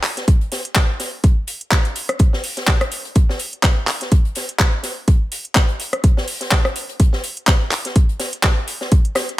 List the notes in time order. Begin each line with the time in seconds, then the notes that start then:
0.03 clap, closed hi-hat, open hi-hat
0.17 snare, closed hi-hat
0.28 kick, closed hi-hat
0.41 closed hi-hat
0.52 snare, closed hi-hat, open hi-hat
0.65 closed hi-hat
0.75 kick, snare, clap, closed hi-hat
1.00 snare, closed hi-hat, open hi-hat
1.24 kick, closed hi-hat
1.47 closed hi-hat, open hi-hat
1.61 closed hi-hat
1.71 kick, snare, clap, closed hi-hat
1.85 closed hi-hat
1.95 closed hi-hat, open hi-hat
2.09 cross-stick, closed hi-hat
2.19 kick, closed hi-hat
2.33 snare
2.44 open hi-hat
2.57 snare, closed hi-hat
2.67 kick, snare, clap, closed hi-hat
2.81 cross-stick, closed hi-hat
2.91 closed hi-hat, open hi-hat
3.05 closed hi-hat
3.15 kick, closed hi-hat
3.29 snare
3.39 closed hi-hat, open hi-hat
3.53 closed hi-hat
3.63 kick, snare, clap, closed hi-hat
3.87 clap, closed hi-hat, open hi-hat
4.01 snare, closed hi-hat
4.12 kick, closed hi-hat
4.25 closed hi-hat
4.35 snare, closed hi-hat, open hi-hat
4.49 closed hi-hat
4.59 kick, snare, clap, closed hi-hat
4.83 snare, closed hi-hat, open hi-hat
5.08 kick, closed hi-hat
5.32 closed hi-hat, open hi-hat
5.45 closed hi-hat
5.55 kick, snare, clap, closed hi-hat
5.68 closed hi-hat
5.80 closed hi-hat, open hi-hat
5.93 cross-stick, closed hi-hat
6.04 kick, closed hi-hat
6.17 snare
6.28 open hi-hat
6.41 snare, closed hi-hat
6.51 kick, snare, clap, closed hi-hat
6.65 cross-stick, closed hi-hat
6.76 closed hi-hat, open hi-hat
6.89 closed hi-hat
7.00 kick, closed hi-hat
7.13 snare
7.24 closed hi-hat, open hi-hat
7.37 closed hi-hat
7.47 kick, snare, clap, closed hi-hat
7.71 clap, closed hi-hat, open hi-hat
7.85 snare, closed hi-hat
7.96 kick, closed hi-hat
8.09 closed hi-hat
8.19 snare, closed hi-hat, open hi-hat
8.33 closed hi-hat
8.43 kick, snare, clap, closed hi-hat
8.67 closed hi-hat, open hi-hat
8.81 snare
8.92 kick, closed hi-hat
9.05 closed hi-hat
9.15 cross-stick, snare, closed hi-hat, open hi-hat
9.29 closed hi-hat